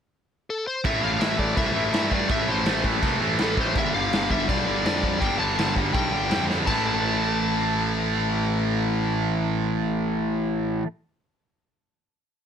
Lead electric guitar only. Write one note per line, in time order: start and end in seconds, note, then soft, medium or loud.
0.50 0.67 A4 medium
0.67 0.86 C5 loud
0.86 1.04 E5 loud
1.04 1.21 F5 loud
1.21 1.39 E5 loud
1.39 1.57 D5 medium
1.57 2.14 E5 loud
2.14 2.31 D5 medium
2.31 2.49 E5 loud
2.50 2.83 C5 medium
3.43 3.58 A4 medium
3.60 3.78 C5 medium
3.78 3.94 E5 loud
3.94 4.31 F5 loud
4.31 4.49 E5 medium
4.49 4.84 D5 medium
4.85 5.23 D5 loud
5.20 5.39 G5 loud
5.39 5.73 A5 loud
5.93 6.45 G5 medium
6.67 10.31 A5 medium